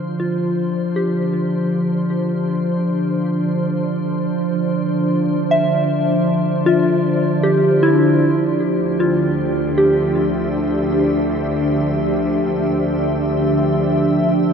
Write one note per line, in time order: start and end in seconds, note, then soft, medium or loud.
0.00 14.53 D3 medium
0.00 14.53 F3 medium
0.00 14.53 D4 medium
0.00 14.53 C5 medium
0.20 1.11 F4 medium
0.96 2.51 G4 medium
5.51 6.82 E5 medium
6.66 8.39 F4 medium
7.43 8.19 G4 medium
7.83 9.44 E4 medium
8.61 14.53 D2 medium
8.77 14.53 G4 medium
9.00 9.93 F4 medium
9.61 14.53 E5 medium
9.78 11.35 G4 medium